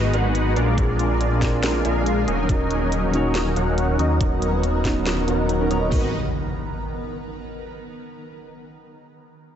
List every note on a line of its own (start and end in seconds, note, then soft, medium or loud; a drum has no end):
0.00 0.12 G#1 loud
0.00 0.55 F#3 medium
0.00 0.11 G#3 medium
0.00 0.53 B3 medium
0.00 0.58 B3 loud
0.00 0.11 D#4 medium
0.00 0.58 D#4 medium
0.00 0.11 F#4 medium
0.00 0.59 F#4 medium
0.00 2.24 G#4 medium
0.00 0.11 B4 medium
0.00 0.56 B4 loud
0.00 0.11 D#5 loud
0.00 0.58 A#5 medium
0.13 0.54 G#1 loud
0.13 0.54 G#3 loud
0.13 0.54 D#4 medium
0.13 0.54 F#4 medium
0.13 0.54 B4 medium
0.13 0.54 F#5 loud
0.13 closed hi-hat medium
0.35 closed hi-hat medium
0.56 0.76 A#1 medium
0.56 2.26 D3 medium
0.56 0.75 G#3 medium
0.56 2.26 A#3 medium
0.56 0.75 D4 medium
0.56 0.75 F4 medium
0.56 0.75 A#4 medium
0.56 0.75 D5 loud
0.56 closed hi-hat medium
0.76 1.83 A#1 loud
0.76 1.83 G#3 medium
0.76 1.38 C4 medium
0.76 1.39 D4 medium
0.76 1.83 D4 medium
0.76 1.83 F4 medium
0.76 1.40 F4 medium
0.76 1.41 G#4 medium
0.76 1.83 A#4 medium
0.76 1.83 D5 loud
0.76 kick loud
0.76 closed hi-hat medium
0.99 closed hi-hat medium
1.21 closed hi-hat medium
1.40 2.26 C4 loud
1.40 2.26 D4 medium
1.40 2.27 F4 medium
1.40 kick medium
1.40 snare medium
1.40 closed hi-hat medium
1.44 2.28 A#4 loud
1.63 snare loud
1.63 closed hi-hat medium
1.85 2.26 A#1 loud
1.85 2.25 G#3 loud
1.85 2.25 D4 medium
1.85 2.25 F4 medium
1.85 2.25 A#4 medium
1.85 2.25 F5 loud
1.85 closed hi-hat medium
2.06 closed hi-hat medium
2.27 2.47 D#1 loud
2.27 4.19 D#3 medium
2.27 2.47 F#3 loud
2.27 4.19 C#4 medium
2.27 2.47 C#4 medium
2.27 2.47 D#4 medium
2.27 4.19 F#4 medium
2.27 2.47 A#4 medium
2.27 2.47 D#5 loud
2.27 closed hi-hat medium
2.47 3.54 D#1 loud
2.47 3.54 F#3 medium
2.47 3.10 C#4 medium
2.47 3.54 C#4 medium
2.47 3.11 D#4 medium
2.47 3.54 D#4 medium
2.47 3.11 F#4 medium
2.47 3.54 A#4 medium
2.47 3.54 D#5 loud
2.47 kick loud
2.47 closed hi-hat medium
2.51 3.12 A#4 medium
2.71 closed hi-hat medium
2.92 closed hi-hat medium
3.12 4.17 C#4 loud
3.12 4.18 D#4 medium
3.12 4.19 F#4 medium
3.12 closed hi-hat medium
3.16 4.19 C#5 loud
3.35 snare loud
3.35 closed hi-hat medium
3.56 3.97 D#1 loud
3.56 3.97 F#3 loud
3.56 3.97 C#4 medium
3.56 3.97 D#4 medium
3.56 3.97 A#4 medium
3.56 3.97 F#5 loud
3.56 closed hi-hat medium
3.78 closed hi-hat medium
3.99 4.19 D#2 medium
3.99 4.18 F#3 loud
3.99 4.18 C#4 medium
3.99 4.18 D#4 medium
3.99 4.18 A#4 medium
3.99 4.18 D#5 loud
3.99 closed hi-hat medium
4.19 5.26 D#1 loud
4.19 5.90 D#3 medium
4.19 5.25 F#3 medium
4.19 5.90 B3 medium
4.19 5.25 B3 medium
4.19 4.81 C#4 medium
4.19 4.82 D#4 medium
4.19 5.25 D#4 medium
4.19 4.83 F#4 medium
4.19 5.90 A#4 medium
4.19 5.25 A#4 medium
4.19 5.25 D#5 loud
4.19 kick loud
4.19 closed hi-hat medium
4.23 4.83 A#4 medium
4.42 closed hi-hat medium
4.64 closed hi-hat medium
4.84 5.26 B3 loud
4.84 5.25 C#4 loud
4.84 5.26 D#4 medium
4.84 5.26 F#4 medium
4.84 kick medium
4.84 snare medium
4.84 closed hi-hat medium
5.06 snare loud
5.06 closed hi-hat medium
5.27 5.69 D#1 loud
5.27 5.68 F#3 loud
5.27 5.68 B3 medium
5.27 5.57 C#4 medium
5.27 5.58 D#4 medium
5.27 5.68 D#4 medium
5.27 5.58 F#4 medium
5.27 5.68 A#4 medium
5.27 5.58 A#4 medium
5.27 5.68 F#5 loud
5.27 closed hi-hat medium
5.49 closed hi-hat medium
5.60 5.68 C#4 medium
5.60 5.68 D#4 medium
5.60 5.68 F#4 medium
5.60 5.69 A#4 loud
5.69 5.90 D#1 medium
5.69 5.90 F#3 loud
5.69 5.90 B3 medium
5.69 5.81 C#4 medium
5.69 5.81 D#4 medium
5.69 5.90 D#4 medium
5.69 5.81 F#4 medium
5.69 5.90 A#4 medium
5.69 5.82 C#5 loud
5.69 5.90 D#5 loud
5.69 closed hi-hat medium
5.89 6.12 G#1 loud
5.89 6.08 G#3 medium
5.89 6.07 B3 medium
5.89 6.08 D#4 medium
5.89 6.08 F#4 medium
5.89 6.08 B4 medium
5.89 6.08 D#5 medium
5.89 kick loud
5.89 open hi-hat medium
5.89 impact medium
5.93 6.09 F#4 medium
5.93 6.10 A#4 medium